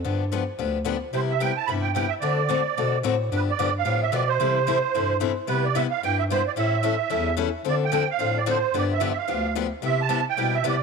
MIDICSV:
0, 0, Header, 1, 4, 480
1, 0, Start_track
1, 0, Key_signature, 0, "major"
1, 0, Tempo, 271739
1, 78, Time_signature, 4, 2, 24, 8
1, 19128, End_track
2, 0, Start_track
2, 0, Title_t, "Accordion"
2, 0, Program_c, 0, 21
2, 2011, Note_on_c, 0, 72, 70
2, 2132, Note_off_c, 0, 72, 0
2, 2304, Note_on_c, 0, 76, 76
2, 2482, Note_on_c, 0, 79, 85
2, 2501, Note_off_c, 0, 76, 0
2, 2762, Note_off_c, 0, 79, 0
2, 2766, Note_on_c, 0, 81, 84
2, 2941, Note_on_c, 0, 83, 85
2, 2972, Note_off_c, 0, 81, 0
2, 3068, Note_off_c, 0, 83, 0
2, 3212, Note_on_c, 0, 79, 87
2, 3379, Note_off_c, 0, 79, 0
2, 3406, Note_on_c, 0, 79, 82
2, 3682, Note_on_c, 0, 76, 85
2, 3705, Note_off_c, 0, 79, 0
2, 3782, Note_off_c, 0, 76, 0
2, 3885, Note_on_c, 0, 74, 73
2, 5273, Note_off_c, 0, 74, 0
2, 5925, Note_on_c, 0, 71, 75
2, 6029, Note_off_c, 0, 71, 0
2, 6179, Note_on_c, 0, 74, 79
2, 6596, Note_off_c, 0, 74, 0
2, 6683, Note_on_c, 0, 77, 96
2, 7067, Note_off_c, 0, 77, 0
2, 7117, Note_on_c, 0, 76, 87
2, 7308, Note_off_c, 0, 76, 0
2, 7309, Note_on_c, 0, 74, 73
2, 7558, Note_on_c, 0, 72, 78
2, 7577, Note_off_c, 0, 74, 0
2, 9133, Note_off_c, 0, 72, 0
2, 9687, Note_on_c, 0, 71, 76
2, 9963, Note_on_c, 0, 74, 76
2, 9966, Note_off_c, 0, 71, 0
2, 10161, Note_on_c, 0, 76, 87
2, 10172, Note_off_c, 0, 74, 0
2, 10284, Note_off_c, 0, 76, 0
2, 10434, Note_on_c, 0, 77, 84
2, 10627, Note_off_c, 0, 77, 0
2, 10661, Note_on_c, 0, 79, 95
2, 10906, Note_off_c, 0, 79, 0
2, 10933, Note_on_c, 0, 76, 85
2, 11022, Note_off_c, 0, 76, 0
2, 11148, Note_on_c, 0, 72, 79
2, 11390, Note_off_c, 0, 72, 0
2, 11429, Note_on_c, 0, 74, 79
2, 11514, Note_off_c, 0, 74, 0
2, 11623, Note_on_c, 0, 76, 75
2, 12980, Note_off_c, 0, 76, 0
2, 13586, Note_on_c, 0, 74, 82
2, 13694, Note_off_c, 0, 74, 0
2, 13869, Note_on_c, 0, 79, 93
2, 14280, Note_off_c, 0, 79, 0
2, 14323, Note_on_c, 0, 77, 92
2, 14791, Note_off_c, 0, 77, 0
2, 14800, Note_on_c, 0, 74, 80
2, 14988, Note_off_c, 0, 74, 0
2, 14998, Note_on_c, 0, 72, 75
2, 15472, Note_off_c, 0, 72, 0
2, 15507, Note_on_c, 0, 74, 80
2, 15615, Note_off_c, 0, 74, 0
2, 15775, Note_on_c, 0, 76, 78
2, 16055, Note_off_c, 0, 76, 0
2, 16081, Note_on_c, 0, 76, 61
2, 16207, Note_off_c, 0, 76, 0
2, 16216, Note_on_c, 0, 77, 76
2, 16843, Note_off_c, 0, 77, 0
2, 17404, Note_on_c, 0, 76, 84
2, 17662, Note_off_c, 0, 76, 0
2, 17692, Note_on_c, 0, 81, 90
2, 18110, Note_off_c, 0, 81, 0
2, 18180, Note_on_c, 0, 79, 87
2, 18630, Note_on_c, 0, 76, 85
2, 18639, Note_off_c, 0, 79, 0
2, 18823, Note_off_c, 0, 76, 0
2, 18854, Note_on_c, 0, 74, 73
2, 19128, Note_off_c, 0, 74, 0
2, 19128, End_track
3, 0, Start_track
3, 0, Title_t, "Steel-string acoustic guitar"
3, 0, Program_c, 1, 25
3, 79, Note_on_c, 1, 50, 61
3, 80, Note_on_c, 1, 53, 61
3, 86, Note_on_c, 1, 59, 62
3, 92, Note_on_c, 1, 62, 62
3, 98, Note_on_c, 1, 67, 58
3, 404, Note_off_c, 1, 50, 0
3, 405, Note_off_c, 1, 53, 0
3, 408, Note_off_c, 1, 59, 0
3, 411, Note_off_c, 1, 62, 0
3, 414, Note_off_c, 1, 67, 0
3, 559, Note_on_c, 1, 50, 67
3, 569, Note_on_c, 1, 53, 68
3, 576, Note_on_c, 1, 59, 84
3, 576, Note_on_c, 1, 62, 74
3, 586, Note_on_c, 1, 67, 74
3, 740, Note_off_c, 1, 50, 0
3, 745, Note_off_c, 1, 53, 0
3, 749, Note_off_c, 1, 59, 0
3, 749, Note_off_c, 1, 62, 0
3, 754, Note_off_c, 1, 67, 0
3, 1035, Note_on_c, 1, 50, 52
3, 1035, Note_on_c, 1, 53, 55
3, 1046, Note_on_c, 1, 59, 51
3, 1048, Note_on_c, 1, 62, 53
3, 1048, Note_on_c, 1, 67, 56
3, 1363, Note_off_c, 1, 50, 0
3, 1363, Note_off_c, 1, 53, 0
3, 1368, Note_off_c, 1, 59, 0
3, 1369, Note_off_c, 1, 62, 0
3, 1369, Note_off_c, 1, 67, 0
3, 1494, Note_on_c, 1, 50, 68
3, 1504, Note_on_c, 1, 53, 82
3, 1507, Note_on_c, 1, 59, 86
3, 1511, Note_on_c, 1, 62, 84
3, 1513, Note_on_c, 1, 67, 86
3, 1688, Note_off_c, 1, 50, 0
3, 1693, Note_off_c, 1, 53, 0
3, 1694, Note_off_c, 1, 59, 0
3, 1696, Note_off_c, 1, 62, 0
3, 1698, Note_off_c, 1, 67, 0
3, 1994, Note_on_c, 1, 48, 48
3, 2004, Note_on_c, 1, 59, 51
3, 2005, Note_on_c, 1, 55, 56
3, 2005, Note_on_c, 1, 64, 56
3, 2019, Note_on_c, 1, 67, 67
3, 2322, Note_off_c, 1, 48, 0
3, 2327, Note_off_c, 1, 59, 0
3, 2328, Note_off_c, 1, 55, 0
3, 2328, Note_off_c, 1, 64, 0
3, 2335, Note_off_c, 1, 67, 0
3, 2478, Note_on_c, 1, 48, 73
3, 2489, Note_on_c, 1, 55, 69
3, 2489, Note_on_c, 1, 59, 79
3, 2494, Note_on_c, 1, 64, 79
3, 2501, Note_on_c, 1, 67, 76
3, 2660, Note_off_c, 1, 48, 0
3, 2666, Note_off_c, 1, 55, 0
3, 2666, Note_off_c, 1, 59, 0
3, 2669, Note_off_c, 1, 64, 0
3, 2672, Note_off_c, 1, 67, 0
3, 2963, Note_on_c, 1, 48, 57
3, 2977, Note_on_c, 1, 55, 57
3, 2982, Note_on_c, 1, 64, 59
3, 2982, Note_on_c, 1, 67, 57
3, 2985, Note_on_c, 1, 59, 54
3, 3287, Note_off_c, 1, 48, 0
3, 3294, Note_off_c, 1, 55, 0
3, 3297, Note_off_c, 1, 64, 0
3, 3297, Note_off_c, 1, 67, 0
3, 3298, Note_off_c, 1, 59, 0
3, 3440, Note_on_c, 1, 48, 72
3, 3456, Note_on_c, 1, 55, 76
3, 3459, Note_on_c, 1, 59, 78
3, 3461, Note_on_c, 1, 64, 75
3, 3469, Note_on_c, 1, 67, 81
3, 3621, Note_off_c, 1, 48, 0
3, 3630, Note_off_c, 1, 55, 0
3, 3631, Note_off_c, 1, 59, 0
3, 3632, Note_off_c, 1, 64, 0
3, 3636, Note_off_c, 1, 67, 0
3, 3917, Note_on_c, 1, 50, 57
3, 3923, Note_on_c, 1, 57, 62
3, 3929, Note_on_c, 1, 60, 58
3, 3936, Note_on_c, 1, 69, 61
3, 3940, Note_on_c, 1, 66, 63
3, 4244, Note_off_c, 1, 50, 0
3, 4247, Note_off_c, 1, 57, 0
3, 4250, Note_off_c, 1, 60, 0
3, 4254, Note_off_c, 1, 69, 0
3, 4256, Note_off_c, 1, 66, 0
3, 4391, Note_on_c, 1, 50, 67
3, 4403, Note_on_c, 1, 60, 78
3, 4404, Note_on_c, 1, 57, 71
3, 4420, Note_on_c, 1, 69, 74
3, 4423, Note_on_c, 1, 66, 88
3, 4577, Note_off_c, 1, 50, 0
3, 4583, Note_off_c, 1, 60, 0
3, 4584, Note_off_c, 1, 57, 0
3, 4592, Note_off_c, 1, 69, 0
3, 4593, Note_off_c, 1, 66, 0
3, 4899, Note_on_c, 1, 50, 57
3, 4905, Note_on_c, 1, 60, 63
3, 4906, Note_on_c, 1, 57, 64
3, 4907, Note_on_c, 1, 66, 56
3, 4915, Note_on_c, 1, 69, 62
3, 5216, Note_off_c, 1, 50, 0
3, 5219, Note_off_c, 1, 57, 0
3, 5219, Note_off_c, 1, 60, 0
3, 5220, Note_off_c, 1, 66, 0
3, 5224, Note_off_c, 1, 69, 0
3, 5358, Note_on_c, 1, 50, 78
3, 5369, Note_on_c, 1, 57, 81
3, 5377, Note_on_c, 1, 60, 91
3, 5379, Note_on_c, 1, 69, 87
3, 5380, Note_on_c, 1, 66, 88
3, 5541, Note_off_c, 1, 50, 0
3, 5546, Note_off_c, 1, 57, 0
3, 5551, Note_off_c, 1, 60, 0
3, 5551, Note_off_c, 1, 69, 0
3, 5552, Note_off_c, 1, 66, 0
3, 5862, Note_on_c, 1, 50, 58
3, 5869, Note_on_c, 1, 53, 65
3, 5871, Note_on_c, 1, 59, 56
3, 5873, Note_on_c, 1, 62, 61
3, 5885, Note_on_c, 1, 67, 62
3, 6177, Note_off_c, 1, 50, 0
3, 6181, Note_off_c, 1, 53, 0
3, 6182, Note_off_c, 1, 59, 0
3, 6183, Note_off_c, 1, 62, 0
3, 6189, Note_off_c, 1, 67, 0
3, 6339, Note_on_c, 1, 53, 76
3, 6342, Note_on_c, 1, 50, 75
3, 6345, Note_on_c, 1, 59, 77
3, 6355, Note_on_c, 1, 67, 83
3, 6357, Note_on_c, 1, 62, 86
3, 6512, Note_off_c, 1, 53, 0
3, 6513, Note_off_c, 1, 50, 0
3, 6515, Note_off_c, 1, 59, 0
3, 6520, Note_off_c, 1, 67, 0
3, 6521, Note_off_c, 1, 62, 0
3, 6796, Note_on_c, 1, 50, 52
3, 6802, Note_on_c, 1, 53, 58
3, 6803, Note_on_c, 1, 59, 55
3, 6810, Note_on_c, 1, 62, 61
3, 6811, Note_on_c, 1, 67, 58
3, 7124, Note_off_c, 1, 50, 0
3, 7128, Note_off_c, 1, 53, 0
3, 7128, Note_off_c, 1, 59, 0
3, 7131, Note_off_c, 1, 62, 0
3, 7132, Note_off_c, 1, 67, 0
3, 7276, Note_on_c, 1, 50, 74
3, 7281, Note_on_c, 1, 53, 73
3, 7290, Note_on_c, 1, 59, 83
3, 7293, Note_on_c, 1, 67, 89
3, 7294, Note_on_c, 1, 62, 82
3, 7460, Note_off_c, 1, 50, 0
3, 7463, Note_off_c, 1, 53, 0
3, 7467, Note_off_c, 1, 59, 0
3, 7469, Note_off_c, 1, 62, 0
3, 7469, Note_off_c, 1, 67, 0
3, 7764, Note_on_c, 1, 48, 54
3, 7769, Note_on_c, 1, 52, 58
3, 7773, Note_on_c, 1, 55, 62
3, 7782, Note_on_c, 1, 60, 66
3, 7782, Note_on_c, 1, 64, 68
3, 7788, Note_on_c, 1, 69, 68
3, 8088, Note_off_c, 1, 48, 0
3, 8091, Note_off_c, 1, 52, 0
3, 8093, Note_off_c, 1, 55, 0
3, 8097, Note_off_c, 1, 64, 0
3, 8098, Note_off_c, 1, 60, 0
3, 8100, Note_off_c, 1, 69, 0
3, 8244, Note_on_c, 1, 52, 73
3, 8250, Note_on_c, 1, 48, 69
3, 8254, Note_on_c, 1, 55, 76
3, 8267, Note_on_c, 1, 60, 84
3, 8268, Note_on_c, 1, 64, 90
3, 8268, Note_on_c, 1, 69, 75
3, 8424, Note_off_c, 1, 52, 0
3, 8427, Note_off_c, 1, 48, 0
3, 8429, Note_off_c, 1, 55, 0
3, 8435, Note_off_c, 1, 60, 0
3, 8436, Note_off_c, 1, 64, 0
3, 8436, Note_off_c, 1, 69, 0
3, 8734, Note_on_c, 1, 48, 58
3, 8743, Note_on_c, 1, 60, 54
3, 8745, Note_on_c, 1, 64, 56
3, 8747, Note_on_c, 1, 52, 60
3, 8751, Note_on_c, 1, 55, 52
3, 8757, Note_on_c, 1, 69, 61
3, 9054, Note_off_c, 1, 48, 0
3, 9058, Note_off_c, 1, 60, 0
3, 9059, Note_off_c, 1, 64, 0
3, 9060, Note_off_c, 1, 52, 0
3, 9062, Note_off_c, 1, 55, 0
3, 9065, Note_off_c, 1, 69, 0
3, 9187, Note_on_c, 1, 48, 70
3, 9198, Note_on_c, 1, 64, 88
3, 9199, Note_on_c, 1, 52, 80
3, 9200, Note_on_c, 1, 60, 82
3, 9202, Note_on_c, 1, 55, 85
3, 9214, Note_on_c, 1, 69, 77
3, 9376, Note_off_c, 1, 48, 0
3, 9381, Note_off_c, 1, 64, 0
3, 9382, Note_off_c, 1, 52, 0
3, 9382, Note_off_c, 1, 60, 0
3, 9383, Note_off_c, 1, 55, 0
3, 9389, Note_off_c, 1, 69, 0
3, 9667, Note_on_c, 1, 48, 55
3, 9673, Note_on_c, 1, 55, 59
3, 9676, Note_on_c, 1, 59, 63
3, 9681, Note_on_c, 1, 64, 67
3, 9682, Note_on_c, 1, 67, 63
3, 10000, Note_off_c, 1, 48, 0
3, 10003, Note_off_c, 1, 55, 0
3, 10004, Note_off_c, 1, 59, 0
3, 10007, Note_off_c, 1, 64, 0
3, 10008, Note_off_c, 1, 67, 0
3, 10156, Note_on_c, 1, 48, 79
3, 10160, Note_on_c, 1, 55, 83
3, 10167, Note_on_c, 1, 64, 90
3, 10173, Note_on_c, 1, 59, 84
3, 10178, Note_on_c, 1, 67, 88
3, 10340, Note_off_c, 1, 48, 0
3, 10342, Note_off_c, 1, 55, 0
3, 10346, Note_off_c, 1, 64, 0
3, 10349, Note_off_c, 1, 59, 0
3, 10351, Note_off_c, 1, 67, 0
3, 10655, Note_on_c, 1, 48, 53
3, 10655, Note_on_c, 1, 55, 59
3, 10666, Note_on_c, 1, 59, 54
3, 10674, Note_on_c, 1, 64, 56
3, 10676, Note_on_c, 1, 67, 65
3, 10974, Note_off_c, 1, 48, 0
3, 10974, Note_off_c, 1, 55, 0
3, 10979, Note_off_c, 1, 59, 0
3, 10983, Note_off_c, 1, 64, 0
3, 10984, Note_off_c, 1, 67, 0
3, 11134, Note_on_c, 1, 48, 72
3, 11138, Note_on_c, 1, 55, 82
3, 11150, Note_on_c, 1, 64, 83
3, 11156, Note_on_c, 1, 59, 88
3, 11160, Note_on_c, 1, 67, 80
3, 11309, Note_off_c, 1, 48, 0
3, 11311, Note_off_c, 1, 55, 0
3, 11317, Note_off_c, 1, 64, 0
3, 11320, Note_off_c, 1, 59, 0
3, 11322, Note_off_c, 1, 67, 0
3, 11588, Note_on_c, 1, 52, 61
3, 11601, Note_on_c, 1, 61, 69
3, 11603, Note_on_c, 1, 55, 64
3, 11609, Note_on_c, 1, 64, 71
3, 11612, Note_on_c, 1, 69, 70
3, 11920, Note_off_c, 1, 52, 0
3, 11927, Note_off_c, 1, 61, 0
3, 11928, Note_off_c, 1, 55, 0
3, 11930, Note_off_c, 1, 64, 0
3, 11932, Note_off_c, 1, 69, 0
3, 12061, Note_on_c, 1, 52, 78
3, 12072, Note_on_c, 1, 55, 78
3, 12077, Note_on_c, 1, 61, 80
3, 12082, Note_on_c, 1, 64, 85
3, 12087, Note_on_c, 1, 69, 80
3, 12252, Note_off_c, 1, 52, 0
3, 12257, Note_off_c, 1, 55, 0
3, 12260, Note_off_c, 1, 61, 0
3, 12263, Note_off_c, 1, 64, 0
3, 12265, Note_off_c, 1, 69, 0
3, 12535, Note_on_c, 1, 52, 61
3, 12543, Note_on_c, 1, 55, 55
3, 12545, Note_on_c, 1, 61, 63
3, 12548, Note_on_c, 1, 69, 69
3, 12549, Note_on_c, 1, 64, 71
3, 12873, Note_off_c, 1, 52, 0
3, 12877, Note_off_c, 1, 55, 0
3, 12878, Note_off_c, 1, 61, 0
3, 12880, Note_off_c, 1, 64, 0
3, 12880, Note_off_c, 1, 69, 0
3, 13012, Note_on_c, 1, 52, 80
3, 13019, Note_on_c, 1, 64, 82
3, 13021, Note_on_c, 1, 61, 86
3, 13025, Note_on_c, 1, 55, 83
3, 13031, Note_on_c, 1, 69, 89
3, 13207, Note_off_c, 1, 52, 0
3, 13211, Note_off_c, 1, 64, 0
3, 13212, Note_off_c, 1, 61, 0
3, 13214, Note_off_c, 1, 55, 0
3, 13217, Note_off_c, 1, 69, 0
3, 13503, Note_on_c, 1, 50, 59
3, 13507, Note_on_c, 1, 53, 68
3, 13514, Note_on_c, 1, 60, 67
3, 13521, Note_on_c, 1, 69, 72
3, 13527, Note_on_c, 1, 62, 67
3, 13837, Note_off_c, 1, 50, 0
3, 13839, Note_off_c, 1, 53, 0
3, 13842, Note_off_c, 1, 60, 0
3, 13846, Note_off_c, 1, 69, 0
3, 13849, Note_off_c, 1, 62, 0
3, 13984, Note_on_c, 1, 53, 84
3, 13985, Note_on_c, 1, 50, 80
3, 13996, Note_on_c, 1, 60, 78
3, 14004, Note_on_c, 1, 62, 90
3, 14011, Note_on_c, 1, 69, 82
3, 14173, Note_off_c, 1, 53, 0
3, 14174, Note_off_c, 1, 50, 0
3, 14179, Note_off_c, 1, 60, 0
3, 14183, Note_off_c, 1, 62, 0
3, 14186, Note_off_c, 1, 69, 0
3, 14465, Note_on_c, 1, 50, 66
3, 14472, Note_on_c, 1, 53, 64
3, 14478, Note_on_c, 1, 60, 61
3, 14483, Note_on_c, 1, 62, 64
3, 14488, Note_on_c, 1, 69, 66
3, 14797, Note_off_c, 1, 50, 0
3, 14801, Note_off_c, 1, 53, 0
3, 14804, Note_off_c, 1, 60, 0
3, 14807, Note_off_c, 1, 62, 0
3, 14809, Note_off_c, 1, 69, 0
3, 14948, Note_on_c, 1, 53, 92
3, 14950, Note_on_c, 1, 50, 84
3, 14954, Note_on_c, 1, 60, 84
3, 14959, Note_on_c, 1, 62, 88
3, 14961, Note_on_c, 1, 69, 87
3, 15134, Note_off_c, 1, 53, 0
3, 15136, Note_off_c, 1, 50, 0
3, 15138, Note_off_c, 1, 60, 0
3, 15140, Note_off_c, 1, 62, 0
3, 15141, Note_off_c, 1, 69, 0
3, 15436, Note_on_c, 1, 50, 61
3, 15440, Note_on_c, 1, 53, 53
3, 15441, Note_on_c, 1, 59, 61
3, 15452, Note_on_c, 1, 62, 68
3, 15459, Note_on_c, 1, 67, 64
3, 15763, Note_off_c, 1, 50, 0
3, 15765, Note_off_c, 1, 53, 0
3, 15765, Note_off_c, 1, 59, 0
3, 15771, Note_off_c, 1, 62, 0
3, 15774, Note_off_c, 1, 67, 0
3, 15899, Note_on_c, 1, 50, 81
3, 15911, Note_on_c, 1, 53, 89
3, 15914, Note_on_c, 1, 59, 87
3, 15918, Note_on_c, 1, 62, 82
3, 15920, Note_on_c, 1, 67, 87
3, 16090, Note_off_c, 1, 50, 0
3, 16096, Note_off_c, 1, 53, 0
3, 16098, Note_off_c, 1, 59, 0
3, 16099, Note_off_c, 1, 62, 0
3, 16100, Note_off_c, 1, 67, 0
3, 16388, Note_on_c, 1, 53, 62
3, 16391, Note_on_c, 1, 50, 59
3, 16395, Note_on_c, 1, 59, 63
3, 16401, Note_on_c, 1, 62, 63
3, 16408, Note_on_c, 1, 67, 53
3, 16718, Note_off_c, 1, 53, 0
3, 16720, Note_off_c, 1, 50, 0
3, 16722, Note_off_c, 1, 59, 0
3, 16725, Note_off_c, 1, 62, 0
3, 16729, Note_off_c, 1, 67, 0
3, 16876, Note_on_c, 1, 50, 75
3, 16881, Note_on_c, 1, 62, 86
3, 16887, Note_on_c, 1, 59, 84
3, 16889, Note_on_c, 1, 53, 80
3, 16896, Note_on_c, 1, 67, 82
3, 17058, Note_off_c, 1, 50, 0
3, 17060, Note_off_c, 1, 62, 0
3, 17063, Note_off_c, 1, 59, 0
3, 17065, Note_off_c, 1, 53, 0
3, 17068, Note_off_c, 1, 67, 0
3, 17346, Note_on_c, 1, 55, 61
3, 17349, Note_on_c, 1, 48, 58
3, 17358, Note_on_c, 1, 64, 63
3, 17367, Note_on_c, 1, 59, 61
3, 17373, Note_on_c, 1, 67, 66
3, 17677, Note_off_c, 1, 55, 0
3, 17679, Note_off_c, 1, 48, 0
3, 17683, Note_off_c, 1, 64, 0
3, 17688, Note_off_c, 1, 59, 0
3, 17691, Note_off_c, 1, 67, 0
3, 17822, Note_on_c, 1, 55, 84
3, 17824, Note_on_c, 1, 48, 78
3, 17833, Note_on_c, 1, 59, 78
3, 17834, Note_on_c, 1, 64, 81
3, 17843, Note_on_c, 1, 67, 79
3, 18011, Note_off_c, 1, 55, 0
3, 18012, Note_off_c, 1, 48, 0
3, 18017, Note_off_c, 1, 59, 0
3, 18017, Note_off_c, 1, 64, 0
3, 18021, Note_off_c, 1, 67, 0
3, 18318, Note_on_c, 1, 48, 58
3, 18325, Note_on_c, 1, 55, 58
3, 18333, Note_on_c, 1, 59, 58
3, 18334, Note_on_c, 1, 64, 64
3, 18341, Note_on_c, 1, 67, 63
3, 18643, Note_off_c, 1, 48, 0
3, 18646, Note_off_c, 1, 55, 0
3, 18651, Note_off_c, 1, 59, 0
3, 18651, Note_off_c, 1, 64, 0
3, 18654, Note_off_c, 1, 67, 0
3, 18792, Note_on_c, 1, 48, 80
3, 18796, Note_on_c, 1, 59, 86
3, 18805, Note_on_c, 1, 55, 80
3, 18811, Note_on_c, 1, 64, 91
3, 18817, Note_on_c, 1, 67, 85
3, 18976, Note_off_c, 1, 48, 0
3, 18978, Note_off_c, 1, 59, 0
3, 18982, Note_off_c, 1, 55, 0
3, 18985, Note_off_c, 1, 64, 0
3, 18988, Note_off_c, 1, 67, 0
3, 19128, End_track
4, 0, Start_track
4, 0, Title_t, "Bass clarinet"
4, 0, Program_c, 2, 71
4, 93, Note_on_c, 2, 43, 75
4, 856, Note_off_c, 2, 43, 0
4, 1039, Note_on_c, 2, 38, 72
4, 1807, Note_off_c, 2, 38, 0
4, 1998, Note_on_c, 2, 48, 78
4, 2767, Note_off_c, 2, 48, 0
4, 2962, Note_on_c, 2, 43, 73
4, 3730, Note_off_c, 2, 43, 0
4, 3920, Note_on_c, 2, 50, 82
4, 4688, Note_off_c, 2, 50, 0
4, 4892, Note_on_c, 2, 47, 74
4, 5296, Note_off_c, 2, 47, 0
4, 5373, Note_on_c, 2, 45, 67
4, 5776, Note_off_c, 2, 45, 0
4, 5850, Note_on_c, 2, 43, 85
4, 6231, Note_off_c, 2, 43, 0
4, 6331, Note_on_c, 2, 43, 67
4, 6735, Note_off_c, 2, 43, 0
4, 6794, Note_on_c, 2, 45, 72
4, 7205, Note_off_c, 2, 45, 0
4, 7284, Note_on_c, 2, 47, 71
4, 7691, Note_off_c, 2, 47, 0
4, 7772, Note_on_c, 2, 48, 82
4, 8536, Note_off_c, 2, 48, 0
4, 8707, Note_on_c, 2, 43, 70
4, 9481, Note_off_c, 2, 43, 0
4, 9670, Note_on_c, 2, 48, 76
4, 10443, Note_off_c, 2, 48, 0
4, 10634, Note_on_c, 2, 43, 77
4, 11405, Note_off_c, 2, 43, 0
4, 11599, Note_on_c, 2, 45, 87
4, 12368, Note_off_c, 2, 45, 0
4, 12547, Note_on_c, 2, 40, 78
4, 13320, Note_off_c, 2, 40, 0
4, 13505, Note_on_c, 2, 50, 82
4, 14279, Note_off_c, 2, 50, 0
4, 14481, Note_on_c, 2, 45, 72
4, 15248, Note_off_c, 2, 45, 0
4, 15433, Note_on_c, 2, 43, 88
4, 16203, Note_off_c, 2, 43, 0
4, 16394, Note_on_c, 2, 38, 77
4, 17163, Note_off_c, 2, 38, 0
4, 17352, Note_on_c, 2, 48, 78
4, 18122, Note_off_c, 2, 48, 0
4, 18326, Note_on_c, 2, 47, 79
4, 18730, Note_off_c, 2, 47, 0
4, 18800, Note_on_c, 2, 48, 75
4, 19128, Note_off_c, 2, 48, 0
4, 19128, End_track
0, 0, End_of_file